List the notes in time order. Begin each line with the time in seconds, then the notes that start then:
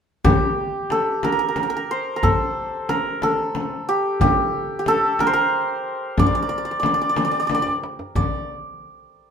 0.25 G4, frame drum, tombak dum
0.59 tombak ka
0.90 A4, tombak tek, frame drum
1.23 A#4, tombak tek, frame drum
1.32 A#4
1.39 A#4
1.48 A#4
1.56 A#4, tombak tek, frame drum
1.63 A#4
1.70 A#4
1.77 A#4
1.91 C5
2.16 A#4
2.23 A4, frame drum, tombak dum
2.57 tombak ka
2.89 A#4, tombak tek, frame drum
3.22 A4, tombak tek, frame drum
3.55 tombak tek, frame drum
3.89 G4
4.20 G4, tombak dum, frame drum
4.53 tombak ka
4.79 G4
4.86 A4, tombak tek, frame drum
5.19 A#4, tombak tek, frame drum
5.27 C5
5.33 A#4
6.18 D5, frame drum, tombak dum
6.26 D5
6.35 D5
6.42 D5
6.49 D5, tombak ka
6.58 D5
6.65 D5
6.71 D5
6.80 D5, tombak tek, frame drum
6.86 D5
6.94 D5
7.01 D5
7.09 D5
7.16 D5, tombak tek, frame drum
7.25 D5
7.31 D5
7.40 D5
7.47 D5, tombak tek, frame drum
7.54 D5
7.62 D5
7.67 tombak ka
7.84 tombak tek
7.99 tombak ka
8.15 D5, tombak dum, frame drum